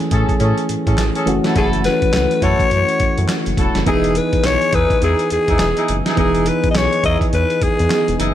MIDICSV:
0, 0, Header, 1, 6, 480
1, 0, Start_track
1, 0, Key_signature, 4, "major"
1, 0, Tempo, 576923
1, 1295, Time_signature, 4, 2, 24, 8
1, 6939, End_track
2, 0, Start_track
2, 0, Title_t, "Alto saxophone"
2, 0, Program_c, 0, 65
2, 1309, Note_on_c, 0, 68, 82
2, 1414, Note_off_c, 0, 68, 0
2, 1543, Note_on_c, 0, 71, 90
2, 2021, Note_on_c, 0, 73, 104
2, 2033, Note_off_c, 0, 71, 0
2, 2738, Note_off_c, 0, 73, 0
2, 3234, Note_on_c, 0, 68, 96
2, 3473, Note_on_c, 0, 71, 92
2, 3485, Note_off_c, 0, 68, 0
2, 3710, Note_on_c, 0, 73, 110
2, 3723, Note_off_c, 0, 71, 0
2, 3950, Note_on_c, 0, 71, 98
2, 3962, Note_off_c, 0, 73, 0
2, 4183, Note_off_c, 0, 71, 0
2, 4187, Note_on_c, 0, 68, 85
2, 4405, Note_off_c, 0, 68, 0
2, 4427, Note_on_c, 0, 68, 83
2, 4868, Note_off_c, 0, 68, 0
2, 5154, Note_on_c, 0, 68, 81
2, 5391, Note_on_c, 0, 71, 86
2, 5404, Note_off_c, 0, 68, 0
2, 5578, Note_off_c, 0, 71, 0
2, 5582, Note_on_c, 0, 75, 71
2, 5630, Note_on_c, 0, 73, 102
2, 5642, Note_off_c, 0, 75, 0
2, 5863, Note_off_c, 0, 73, 0
2, 5871, Note_on_c, 0, 75, 94
2, 5975, Note_off_c, 0, 75, 0
2, 6108, Note_on_c, 0, 71, 92
2, 6347, Note_on_c, 0, 68, 85
2, 6360, Note_off_c, 0, 71, 0
2, 6821, Note_off_c, 0, 68, 0
2, 6939, End_track
3, 0, Start_track
3, 0, Title_t, "Horn section"
3, 0, Program_c, 1, 61
3, 95, Note_on_c, 1, 61, 75
3, 98, Note_on_c, 1, 68, 68
3, 100, Note_on_c, 1, 69, 86
3, 275, Note_off_c, 1, 61, 0
3, 276, Note_off_c, 1, 68, 0
3, 277, Note_off_c, 1, 69, 0
3, 334, Note_on_c, 1, 61, 76
3, 337, Note_on_c, 1, 68, 72
3, 339, Note_on_c, 1, 69, 77
3, 515, Note_off_c, 1, 61, 0
3, 516, Note_off_c, 1, 68, 0
3, 517, Note_off_c, 1, 69, 0
3, 719, Note_on_c, 1, 61, 70
3, 722, Note_on_c, 1, 68, 67
3, 724, Note_on_c, 1, 69, 75
3, 866, Note_off_c, 1, 61, 0
3, 868, Note_off_c, 1, 68, 0
3, 869, Note_off_c, 1, 69, 0
3, 960, Note_on_c, 1, 61, 81
3, 962, Note_on_c, 1, 68, 66
3, 965, Note_on_c, 1, 69, 79
3, 1106, Note_off_c, 1, 61, 0
3, 1107, Note_off_c, 1, 68, 0
3, 1109, Note_off_c, 1, 69, 0
3, 1200, Note_on_c, 1, 64, 75
3, 1202, Note_on_c, 1, 66, 65
3, 1205, Note_on_c, 1, 69, 82
3, 1282, Note_off_c, 1, 64, 0
3, 1285, Note_off_c, 1, 66, 0
3, 1287, Note_off_c, 1, 69, 0
3, 1292, Note_on_c, 1, 64, 91
3, 1295, Note_on_c, 1, 66, 85
3, 1297, Note_on_c, 1, 69, 110
3, 1519, Note_off_c, 1, 64, 0
3, 1520, Note_off_c, 1, 66, 0
3, 1521, Note_off_c, 1, 69, 0
3, 2013, Note_on_c, 1, 64, 76
3, 2015, Note_on_c, 1, 66, 66
3, 2018, Note_on_c, 1, 69, 83
3, 2194, Note_off_c, 1, 64, 0
3, 2195, Note_off_c, 1, 66, 0
3, 2196, Note_off_c, 1, 69, 0
3, 2973, Note_on_c, 1, 64, 72
3, 2976, Note_on_c, 1, 66, 71
3, 2978, Note_on_c, 1, 69, 86
3, 3154, Note_off_c, 1, 64, 0
3, 3155, Note_off_c, 1, 66, 0
3, 3156, Note_off_c, 1, 69, 0
3, 3214, Note_on_c, 1, 63, 96
3, 3216, Note_on_c, 1, 64, 90
3, 3219, Note_on_c, 1, 68, 102
3, 3440, Note_off_c, 1, 63, 0
3, 3441, Note_off_c, 1, 64, 0
3, 3442, Note_off_c, 1, 68, 0
3, 3933, Note_on_c, 1, 63, 77
3, 3936, Note_on_c, 1, 64, 65
3, 3938, Note_on_c, 1, 68, 81
3, 4114, Note_off_c, 1, 63, 0
3, 4115, Note_off_c, 1, 64, 0
3, 4116, Note_off_c, 1, 68, 0
3, 4173, Note_on_c, 1, 63, 80
3, 4177, Note_on_c, 1, 64, 69
3, 4179, Note_on_c, 1, 68, 87
3, 4354, Note_off_c, 1, 63, 0
3, 4356, Note_off_c, 1, 64, 0
3, 4357, Note_off_c, 1, 68, 0
3, 4560, Note_on_c, 1, 63, 75
3, 4563, Note_on_c, 1, 64, 70
3, 4565, Note_on_c, 1, 68, 75
3, 4707, Note_off_c, 1, 63, 0
3, 4708, Note_off_c, 1, 64, 0
3, 4709, Note_off_c, 1, 68, 0
3, 4801, Note_on_c, 1, 63, 76
3, 4804, Note_on_c, 1, 64, 74
3, 4805, Note_on_c, 1, 68, 84
3, 4947, Note_off_c, 1, 63, 0
3, 4949, Note_off_c, 1, 64, 0
3, 4949, Note_off_c, 1, 68, 0
3, 5042, Note_on_c, 1, 63, 71
3, 5045, Note_on_c, 1, 64, 69
3, 5047, Note_on_c, 1, 68, 84
3, 5124, Note_off_c, 1, 63, 0
3, 5127, Note_off_c, 1, 64, 0
3, 5130, Note_off_c, 1, 68, 0
3, 5134, Note_on_c, 1, 63, 98
3, 5137, Note_on_c, 1, 64, 86
3, 5140, Note_on_c, 1, 68, 98
3, 5360, Note_off_c, 1, 63, 0
3, 5361, Note_off_c, 1, 64, 0
3, 5363, Note_off_c, 1, 68, 0
3, 5854, Note_on_c, 1, 63, 79
3, 5856, Note_on_c, 1, 64, 75
3, 5858, Note_on_c, 1, 68, 80
3, 6034, Note_off_c, 1, 63, 0
3, 6035, Note_off_c, 1, 64, 0
3, 6037, Note_off_c, 1, 68, 0
3, 6814, Note_on_c, 1, 63, 77
3, 6817, Note_on_c, 1, 64, 69
3, 6819, Note_on_c, 1, 68, 82
3, 6939, Note_off_c, 1, 63, 0
3, 6939, Note_off_c, 1, 64, 0
3, 6939, Note_off_c, 1, 68, 0
3, 6939, End_track
4, 0, Start_track
4, 0, Title_t, "Synth keys"
4, 0, Program_c, 2, 88
4, 0, Control_c, 2, 64, 127
4, 0, Note_on_c, 2, 52, 73
4, 0, Note_on_c, 2, 57, 66
4, 0, Note_on_c, 2, 61, 67
4, 0, Note_on_c, 2, 68, 84
4, 1018, Note_off_c, 2, 52, 0
4, 1021, Note_off_c, 2, 57, 0
4, 1025, Note_off_c, 2, 61, 0
4, 1028, Note_off_c, 2, 68, 0
4, 1047, Note_on_c, 2, 52, 76
4, 1054, Note_on_c, 2, 57, 67
4, 1060, Note_on_c, 2, 61, 72
4, 1067, Control_c, 2, 64, 0
4, 1067, Note_on_c, 2, 66, 82
4, 1215, Control_c, 2, 64, 127
4, 2938, Note_off_c, 2, 52, 0
4, 2941, Note_off_c, 2, 57, 0
4, 2944, Note_off_c, 2, 61, 0
4, 2948, Note_off_c, 2, 66, 0
4, 3210, Note_on_c, 2, 52, 58
4, 3217, Note_on_c, 2, 59, 55
4, 3224, Note_on_c, 2, 63, 60
4, 3226, Control_c, 2, 64, 0
4, 3230, Note_on_c, 2, 68, 67
4, 3380, Control_c, 2, 64, 127
4, 5100, Note_off_c, 2, 52, 0
4, 5103, Note_off_c, 2, 59, 0
4, 5106, Note_off_c, 2, 63, 0
4, 5109, Note_off_c, 2, 68, 0
4, 5128, Note_on_c, 2, 52, 67
4, 5135, Note_on_c, 2, 59, 61
4, 5142, Note_on_c, 2, 63, 59
4, 5148, Note_on_c, 2, 68, 70
4, 6543, Note_off_c, 2, 52, 0
4, 6546, Note_off_c, 2, 59, 0
4, 6550, Note_off_c, 2, 63, 0
4, 6553, Note_off_c, 2, 68, 0
4, 6575, Note_on_c, 2, 52, 48
4, 6577, Note_on_c, 2, 59, 44
4, 6581, Note_on_c, 2, 63, 45
4, 6583, Note_on_c, 2, 68, 55
4, 6939, Note_off_c, 2, 52, 0
4, 6939, Note_off_c, 2, 59, 0
4, 6939, Note_off_c, 2, 63, 0
4, 6939, Note_off_c, 2, 68, 0
4, 6939, End_track
5, 0, Start_track
5, 0, Title_t, "Analog synth bass"
5, 0, Program_c, 3, 38
5, 97, Note_on_c, 3, 45, 99
5, 200, Note_off_c, 3, 45, 0
5, 339, Note_on_c, 3, 45, 92
5, 441, Note_off_c, 3, 45, 0
5, 579, Note_on_c, 3, 45, 47
5, 636, Note_off_c, 3, 45, 0
5, 724, Note_on_c, 3, 45, 87
5, 790, Note_off_c, 3, 45, 0
5, 818, Note_on_c, 3, 33, 96
5, 921, Note_off_c, 3, 33, 0
5, 1056, Note_on_c, 3, 30, 105
5, 1159, Note_off_c, 3, 30, 0
5, 1298, Note_on_c, 3, 30, 109
5, 1571, Note_off_c, 3, 30, 0
5, 1781, Note_on_c, 3, 37, 91
5, 1883, Note_off_c, 3, 37, 0
5, 2015, Note_on_c, 3, 42, 102
5, 2119, Note_off_c, 3, 42, 0
5, 2258, Note_on_c, 3, 42, 93
5, 2361, Note_off_c, 3, 42, 0
5, 2498, Note_on_c, 3, 42, 50
5, 2556, Note_off_c, 3, 42, 0
5, 2646, Note_on_c, 3, 42, 100
5, 2711, Note_off_c, 3, 42, 0
5, 2887, Note_on_c, 3, 30, 91
5, 2951, Note_off_c, 3, 30, 0
5, 2976, Note_on_c, 3, 28, 85
5, 3080, Note_off_c, 3, 28, 0
5, 3124, Note_on_c, 3, 30, 100
5, 3189, Note_off_c, 3, 30, 0
5, 3217, Note_on_c, 3, 28, 103
5, 3490, Note_off_c, 3, 28, 0
5, 3701, Note_on_c, 3, 35, 89
5, 3803, Note_off_c, 3, 35, 0
5, 3935, Note_on_c, 3, 40, 88
5, 4039, Note_off_c, 3, 40, 0
5, 4180, Note_on_c, 3, 40, 91
5, 4282, Note_off_c, 3, 40, 0
5, 4424, Note_on_c, 3, 40, 49
5, 4480, Note_off_c, 3, 40, 0
5, 4563, Note_on_c, 3, 40, 86
5, 4629, Note_off_c, 3, 40, 0
5, 4661, Note_on_c, 3, 28, 98
5, 4763, Note_off_c, 3, 28, 0
5, 4903, Note_on_c, 3, 30, 90
5, 5004, Note_off_c, 3, 30, 0
5, 5137, Note_on_c, 3, 28, 104
5, 5410, Note_off_c, 3, 28, 0
5, 5620, Note_on_c, 3, 35, 91
5, 5722, Note_off_c, 3, 35, 0
5, 5855, Note_on_c, 3, 40, 109
5, 5959, Note_off_c, 3, 40, 0
5, 6100, Note_on_c, 3, 40, 102
5, 6202, Note_off_c, 3, 40, 0
5, 6338, Note_on_c, 3, 40, 51
5, 6396, Note_off_c, 3, 40, 0
5, 6488, Note_on_c, 3, 40, 94
5, 6552, Note_off_c, 3, 40, 0
5, 6727, Note_on_c, 3, 28, 93
5, 6792, Note_off_c, 3, 28, 0
5, 6819, Note_on_c, 3, 30, 92
5, 6922, Note_off_c, 3, 30, 0
5, 6939, End_track
6, 0, Start_track
6, 0, Title_t, "Drums"
6, 2, Note_on_c, 9, 42, 41
6, 85, Note_off_c, 9, 42, 0
6, 93, Note_on_c, 9, 42, 81
6, 94, Note_on_c, 9, 36, 92
6, 176, Note_off_c, 9, 42, 0
6, 177, Note_off_c, 9, 36, 0
6, 239, Note_on_c, 9, 36, 86
6, 244, Note_on_c, 9, 42, 48
6, 322, Note_off_c, 9, 36, 0
6, 327, Note_off_c, 9, 42, 0
6, 332, Note_on_c, 9, 42, 65
6, 416, Note_off_c, 9, 42, 0
6, 479, Note_on_c, 9, 42, 41
6, 562, Note_off_c, 9, 42, 0
6, 575, Note_on_c, 9, 42, 73
6, 658, Note_off_c, 9, 42, 0
6, 722, Note_on_c, 9, 36, 85
6, 723, Note_on_c, 9, 42, 51
6, 806, Note_off_c, 9, 36, 0
6, 806, Note_off_c, 9, 42, 0
6, 814, Note_on_c, 9, 38, 96
6, 815, Note_on_c, 9, 39, 84
6, 817, Note_on_c, 9, 42, 78
6, 897, Note_off_c, 9, 38, 0
6, 898, Note_off_c, 9, 39, 0
6, 900, Note_off_c, 9, 42, 0
6, 960, Note_on_c, 9, 42, 51
6, 1043, Note_off_c, 9, 42, 0
6, 1057, Note_on_c, 9, 42, 82
6, 1140, Note_off_c, 9, 42, 0
6, 1201, Note_on_c, 9, 38, 65
6, 1201, Note_on_c, 9, 42, 55
6, 1284, Note_off_c, 9, 38, 0
6, 1284, Note_off_c, 9, 42, 0
6, 1295, Note_on_c, 9, 42, 76
6, 1296, Note_on_c, 9, 36, 106
6, 1378, Note_off_c, 9, 42, 0
6, 1379, Note_off_c, 9, 36, 0
6, 1441, Note_on_c, 9, 42, 54
6, 1524, Note_off_c, 9, 42, 0
6, 1533, Note_on_c, 9, 42, 74
6, 1538, Note_on_c, 9, 38, 63
6, 1616, Note_off_c, 9, 42, 0
6, 1621, Note_off_c, 9, 38, 0
6, 1680, Note_on_c, 9, 42, 50
6, 1682, Note_on_c, 9, 36, 76
6, 1764, Note_off_c, 9, 42, 0
6, 1766, Note_off_c, 9, 36, 0
6, 1774, Note_on_c, 9, 42, 67
6, 1775, Note_on_c, 9, 38, 115
6, 1776, Note_on_c, 9, 39, 90
6, 1858, Note_off_c, 9, 38, 0
6, 1858, Note_off_c, 9, 42, 0
6, 1859, Note_off_c, 9, 39, 0
6, 1922, Note_on_c, 9, 42, 47
6, 2005, Note_off_c, 9, 42, 0
6, 2014, Note_on_c, 9, 36, 91
6, 2015, Note_on_c, 9, 42, 79
6, 2098, Note_off_c, 9, 36, 0
6, 2098, Note_off_c, 9, 42, 0
6, 2160, Note_on_c, 9, 36, 89
6, 2164, Note_on_c, 9, 42, 48
6, 2243, Note_off_c, 9, 36, 0
6, 2247, Note_off_c, 9, 42, 0
6, 2256, Note_on_c, 9, 42, 65
6, 2339, Note_off_c, 9, 42, 0
6, 2401, Note_on_c, 9, 42, 41
6, 2484, Note_off_c, 9, 42, 0
6, 2493, Note_on_c, 9, 42, 67
6, 2496, Note_on_c, 9, 36, 88
6, 2577, Note_off_c, 9, 42, 0
6, 2579, Note_off_c, 9, 36, 0
6, 2642, Note_on_c, 9, 42, 53
6, 2726, Note_off_c, 9, 42, 0
6, 2734, Note_on_c, 9, 38, 103
6, 2734, Note_on_c, 9, 39, 86
6, 2737, Note_on_c, 9, 42, 74
6, 2817, Note_off_c, 9, 38, 0
6, 2818, Note_off_c, 9, 39, 0
6, 2820, Note_off_c, 9, 42, 0
6, 2881, Note_on_c, 9, 42, 51
6, 2964, Note_off_c, 9, 42, 0
6, 2974, Note_on_c, 9, 36, 95
6, 2976, Note_on_c, 9, 42, 80
6, 3057, Note_off_c, 9, 36, 0
6, 3060, Note_off_c, 9, 42, 0
6, 3120, Note_on_c, 9, 38, 63
6, 3120, Note_on_c, 9, 42, 57
6, 3203, Note_off_c, 9, 38, 0
6, 3203, Note_off_c, 9, 42, 0
6, 3216, Note_on_c, 9, 36, 95
6, 3216, Note_on_c, 9, 42, 71
6, 3299, Note_off_c, 9, 36, 0
6, 3299, Note_off_c, 9, 42, 0
6, 3361, Note_on_c, 9, 42, 54
6, 3444, Note_off_c, 9, 42, 0
6, 3454, Note_on_c, 9, 42, 76
6, 3537, Note_off_c, 9, 42, 0
6, 3600, Note_on_c, 9, 42, 52
6, 3602, Note_on_c, 9, 36, 78
6, 3684, Note_off_c, 9, 42, 0
6, 3686, Note_off_c, 9, 36, 0
6, 3695, Note_on_c, 9, 42, 71
6, 3696, Note_on_c, 9, 38, 120
6, 3696, Note_on_c, 9, 39, 89
6, 3778, Note_off_c, 9, 42, 0
6, 3779, Note_off_c, 9, 38, 0
6, 3779, Note_off_c, 9, 39, 0
6, 3840, Note_on_c, 9, 42, 40
6, 3923, Note_off_c, 9, 42, 0
6, 3932, Note_on_c, 9, 42, 76
6, 3934, Note_on_c, 9, 36, 88
6, 4015, Note_off_c, 9, 42, 0
6, 4017, Note_off_c, 9, 36, 0
6, 4079, Note_on_c, 9, 36, 87
6, 4082, Note_on_c, 9, 42, 46
6, 4162, Note_off_c, 9, 36, 0
6, 4165, Note_off_c, 9, 42, 0
6, 4175, Note_on_c, 9, 42, 64
6, 4258, Note_off_c, 9, 42, 0
6, 4319, Note_on_c, 9, 42, 40
6, 4402, Note_off_c, 9, 42, 0
6, 4413, Note_on_c, 9, 42, 70
6, 4496, Note_off_c, 9, 42, 0
6, 4560, Note_on_c, 9, 42, 52
6, 4561, Note_on_c, 9, 36, 85
6, 4643, Note_off_c, 9, 42, 0
6, 4644, Note_off_c, 9, 36, 0
6, 4652, Note_on_c, 9, 38, 100
6, 4652, Note_on_c, 9, 39, 84
6, 4655, Note_on_c, 9, 42, 69
6, 4735, Note_off_c, 9, 38, 0
6, 4735, Note_off_c, 9, 39, 0
6, 4738, Note_off_c, 9, 42, 0
6, 4798, Note_on_c, 9, 42, 53
6, 4882, Note_off_c, 9, 42, 0
6, 4895, Note_on_c, 9, 42, 78
6, 4979, Note_off_c, 9, 42, 0
6, 5041, Note_on_c, 9, 42, 61
6, 5042, Note_on_c, 9, 38, 61
6, 5124, Note_off_c, 9, 42, 0
6, 5125, Note_off_c, 9, 38, 0
6, 5135, Note_on_c, 9, 42, 65
6, 5136, Note_on_c, 9, 36, 112
6, 5218, Note_off_c, 9, 42, 0
6, 5219, Note_off_c, 9, 36, 0
6, 5280, Note_on_c, 9, 42, 55
6, 5363, Note_off_c, 9, 42, 0
6, 5373, Note_on_c, 9, 42, 77
6, 5456, Note_off_c, 9, 42, 0
6, 5521, Note_on_c, 9, 42, 51
6, 5523, Note_on_c, 9, 36, 78
6, 5604, Note_off_c, 9, 42, 0
6, 5606, Note_off_c, 9, 36, 0
6, 5617, Note_on_c, 9, 42, 69
6, 5618, Note_on_c, 9, 38, 104
6, 5618, Note_on_c, 9, 39, 86
6, 5700, Note_off_c, 9, 42, 0
6, 5701, Note_off_c, 9, 38, 0
6, 5701, Note_off_c, 9, 39, 0
6, 5762, Note_on_c, 9, 42, 43
6, 5846, Note_off_c, 9, 42, 0
6, 5854, Note_on_c, 9, 42, 75
6, 5855, Note_on_c, 9, 36, 93
6, 5938, Note_off_c, 9, 36, 0
6, 5938, Note_off_c, 9, 42, 0
6, 6000, Note_on_c, 9, 36, 81
6, 6004, Note_on_c, 9, 42, 49
6, 6083, Note_off_c, 9, 36, 0
6, 6088, Note_off_c, 9, 42, 0
6, 6097, Note_on_c, 9, 42, 65
6, 6180, Note_off_c, 9, 42, 0
6, 6241, Note_on_c, 9, 42, 40
6, 6325, Note_off_c, 9, 42, 0
6, 6336, Note_on_c, 9, 42, 69
6, 6337, Note_on_c, 9, 36, 85
6, 6419, Note_off_c, 9, 42, 0
6, 6420, Note_off_c, 9, 36, 0
6, 6484, Note_on_c, 9, 42, 49
6, 6567, Note_off_c, 9, 42, 0
6, 6576, Note_on_c, 9, 38, 99
6, 6576, Note_on_c, 9, 39, 86
6, 6579, Note_on_c, 9, 42, 75
6, 6659, Note_off_c, 9, 38, 0
6, 6660, Note_off_c, 9, 39, 0
6, 6662, Note_off_c, 9, 42, 0
6, 6724, Note_on_c, 9, 42, 54
6, 6807, Note_off_c, 9, 42, 0
6, 6819, Note_on_c, 9, 42, 85
6, 6903, Note_off_c, 9, 42, 0
6, 6939, End_track
0, 0, End_of_file